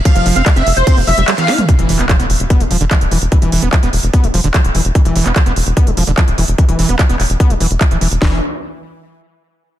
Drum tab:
RD |x---x---x---x---|----------------|----------------|----------------|
HH |xxoxxxoxxooxxxox|xxoxxxoxxxoxxxox|xxoxxxoxxxoxxxox|xxoxxxoxxxoxxxox|
CP |----x-------x---|---xx-------x---|----x-------x---|---xx-------x---|
SD |-------------oo-|----------------|----------------|----------------|
T2 |---------------o|----------------|----------------|----------------|
BD |o---o---o-------|o---o---o---o---|o---o---o---o---|o---o---o---o---|

RD |----------------|----------------|
HH |xxoxxxoxxxoxxxox|----------------|
CP |----x-x-----x---|----------------|
SD |----------------|o---------------|
T2 |----------------|----------------|
BD |o---o---o---o---|o---------------|